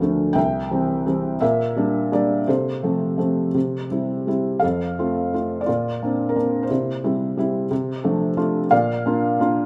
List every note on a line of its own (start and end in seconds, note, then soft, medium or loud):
0.00 0.33 D2 soft
0.00 0.02 D3 soft
0.00 0.29 D3 soft
0.00 0.38 F3 soft
0.00 0.29 A3 soft
0.00 0.38 A#4 soft
0.00 0.38 D5 medium
0.33 1.38 C2 soft
0.33 1.37 E5 medium
0.33 1.43 G5 medium
0.71 1.05 E3 soft
0.71 1.05 G3 soft
0.71 1.06 C4 soft
1.06 1.34 E3 soft
1.06 1.35 G3 soft
1.06 1.35 C4 soft
1.41 2.45 A#2 medium
1.41 2.44 A#4 soft
1.41 2.08 E5 medium
1.77 2.11 G3 soft
1.77 2.11 A#3 soft
1.77 2.11 D4 soft
2.12 2.41 G3 soft
2.12 2.41 A#3 soft
2.12 2.41 D4 soft
2.12 2.49 D5 medium
2.47 3.52 C3 soft
2.47 3.87 A4 soft
2.47 3.87 C5 medium
2.83 3.16 F3 soft
2.83 3.17 A3 soft
2.83 3.18 C4 soft
3.18 3.47 F3 soft
3.18 3.48 A3 soft
3.18 3.48 C4 soft
3.54 4.59 C3 soft
3.91 4.26 G3 soft
3.91 4.26 C4 soft
3.91 4.26 E4 soft
4.27 4.55 G3 soft
4.27 4.56 C4 soft
4.27 4.56 E4 soft
4.60 5.64 F2 soft
4.60 5.63 A4 soft
4.60 5.69 F5 medium
4.99 5.32 A3 soft
4.99 5.32 C4 soft
4.99 5.33 F4 soft
5.33 5.61 A3 soft
5.33 5.61 C4 soft
5.33 5.61 F4 soft
5.61 6.35 D5 medium
5.66 6.67 A#2 soft
5.66 6.65 F4 soft
6.03 6.34 A#3 soft
6.03 6.35 C4 soft
6.03 6.35 D4 soft
6.29 6.68 A#4 medium
6.36 6.63 A#3 soft
6.36 6.63 C4 soft
6.36 6.63 D4 soft
6.63 8.30 C5 medium
6.69 7.68 C3 soft
6.69 7.03 E4 soft
7.04 7.36 G3 soft
7.04 7.37 C4 soft
7.04 7.37 E4 soft
7.38 7.64 G3 soft
7.38 7.64 C4 soft
7.38 7.65 E4 soft
7.71 8.69 C3 medium
8.04 8.58 F3 soft
8.04 8.35 A3 soft
8.04 8.35 D4 soft
8.37 8.64 A3 soft
8.37 8.64 D4 soft
8.37 8.64 F4 soft
8.71 9.66 A#2 medium
8.71 9.66 D5 medium
8.71 9.66 F5 medium
9.06 9.38 A#3 soft
9.06 9.39 D4 soft
9.06 9.39 F4 soft
9.40 9.66 A#3 soft
9.40 9.66 D4 soft
9.40 9.66 F4 soft